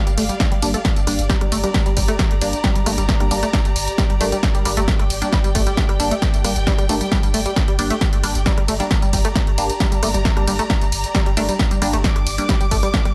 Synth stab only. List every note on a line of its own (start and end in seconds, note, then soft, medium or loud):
0.62 0.76 G3 loud
0.62 0.76 A#3 medium
0.62 0.76 D4 loud
1.07 1.21 G3 loud
1.07 1.21 A#3 medium
1.07 1.21 D4 loud
1.64 1.71 G3 medium
1.64 1.71 A#3 medium
1.64 1.71 D4 medium
2.41 2.55 G3 loud
2.41 2.55 A#3 medium
2.41 2.55 D4 loud
2.86 3.00 G3 medium
2.86 3.00 A#3 medium
2.86 3.00 D4 medium
3.20 3.28 G3 medium
3.20 3.28 A#3 medium
3.20 3.28 D4 medium
3.31 3.40 G3 medium
3.31 3.40 A#3 medium
3.31 3.40 D4 medium
4.21 4.34 G3 loud
4.21 4.34 A#3 medium
4.21 4.34 D4 loud
4.65 4.79 G3 loud
4.65 4.79 A#3 medium
4.65 4.79 D4 loud
5.22 5.30 G3 medium
5.22 5.30 A#3 medium
5.22 5.30 D4 medium
6.00 6.13 G3 loud
6.00 6.13 A#3 medium
6.00 6.13 D4 loud
6.44 6.53 G3 loud
6.44 6.53 A#3 medium
6.44 6.53 D4 loud
6.89 7.03 G3 medium
6.89 7.03 A#3 medium
6.89 7.03 D4 loud
7.79 7.92 G3 loud
7.79 7.92 A#3 medium
7.79 7.92 D4 loud
8.24 8.37 G3 medium
8.24 8.37 A#3 medium
8.24 8.37 D4 loud
8.80 8.88 G3 medium
8.80 8.88 A#3 medium
8.80 8.88 D4 medium
9.58 9.71 G3 loud
9.58 9.71 A#3 loud
9.58 9.71 D4 loud
10.03 10.16 G3 medium
10.03 10.16 A#3 medium
10.03 10.16 D4 medium
10.37 10.45 G3 medium
10.37 10.45 A#3 medium
10.37 10.45 D4 medium
10.47 10.56 G3 medium
10.47 10.56 A#3 medium
10.47 10.56 D4 medium
11.37 11.50 G3 loud
11.37 11.50 A#3 medium
11.37 11.50 D4 loud
11.82 11.95 G3 loud
11.82 11.95 A#3 medium
11.82 11.95 D4 loud
12.38 12.46 G3 medium
12.38 12.46 A#3 medium
12.38 12.46 D4 medium